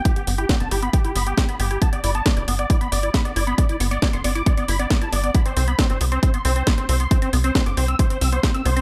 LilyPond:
<<
  \new Staff \with { instrumentName = "Supersaw synth" } { \time 4/4 \key c \major \tempo 4 = 136 g'16 g'16 r16 g'16 g'16 a''16 g'16 b''16 g'16 g'16 b''16 g'16 g'16 b''16 g'16 g'16 | a''16 d''16 d''16 a''16 d''16 d''16 r16 d''16 d''16 b''16 d''16 d''16 b''16 d''16 d''16 b''16 | d''16 d''16 r16 d''16 d''16 c'''16 d''16 d'''16 d''16 d''16 b''16 d''16 d''16 a''16 d''16 d''16 | b''16 c''16 c''16 b''16 c''16 c''16 r16 c''16 c''16 c'''16 c''16 c''16 c'''16 c''16 c''16 c'''16 |
c''16 c''16 r16 c''16 c''16 d'''16 c''16 e'''16 c''16 c''16 e'''16 c''16 c''16 e'''16 c''16 c''16 | }
  \new Staff \with { instrumentName = "Acid bass" } { \time 4/4 \key c \major e'16 b16 b16 e'16 b16 b16 e'16 b16 b16 e'16 b16 b16 e'16 b16 b16 e'16 | b16 b16 e'16 b16 b16 e'16 b16 b16 e'16 b16 b16 e'16 b16 b16 e'16 b16 | b16 e'16 b16 b16 e'16 b16 b16 e'16 b16 b16 e'16 b16 b16 e'16 b16 b16 | b16 c'16 c'16 b16 c'16 c'16 b16 c'16 c'16 b16 c'16 c'16 b16 c'16 c'16 b16 |
c'16 c'16 b16 c'16 c'16 b16 c'16 c'16 b16 c'16 c'16 b16 c'16 c'16 b16 c'16 | }
  \new Staff \with { instrumentName = "Analog synth bass" } { \clef bass \time 4/4 \key c \major r8 g,,8 r16 f,,16 g,,8 r8 g,,8 r8 g,,8 | r8 g,,8 r16 f,,16 g,,8 r8 g,,8 r8 g,,8 | r8 g,,8 r16 f,,16 g,,8 r8 g,,8 r8 g,,8 | r8 c,8 r16 g,,16 c,8 r8 c,8 r8 c,8 |
r8 c,8 r16 g,,16 c,8 r8 c,8 r8 c,8 | }
  \new DrumStaff \with { instrumentName = "Drums" } \drummode { \time 4/4 <hh bd>16 hh16 hho16 hh16 <hh bd sn>16 hh16 hho16 hh16 <hh bd>16 hh16 hho16 hh16 <hh bd sn>16 hh16 hho16 hh16 | <hh bd>16 hh16 hho16 hh16 <hh bd sn>16 hh16 hho16 hh16 <hh bd>16 hh16 hho16 hh16 <hh bd sn>16 hh16 hho16 hh16 | <hh bd>16 hh16 hho16 hh16 <hh bd sn>16 hh16 hho16 hh16 <hh bd>16 hh16 hho16 hh16 <hh bd sn>16 hh16 hho16 hh16 | <hh bd>16 hh16 hho16 hh16 <hh bd sn>16 hh16 hho16 hh16 <hh bd>16 hh16 hho16 hh16 <hh bd sn>16 hh16 hho16 hh16 |
<hh bd>16 hh16 hho16 hh16 <hh bd sn>16 hh16 hho16 hh16 <hh bd>16 hh16 hho16 hh16 <hh bd sn>16 hh16 hho16 hh16 | }
>>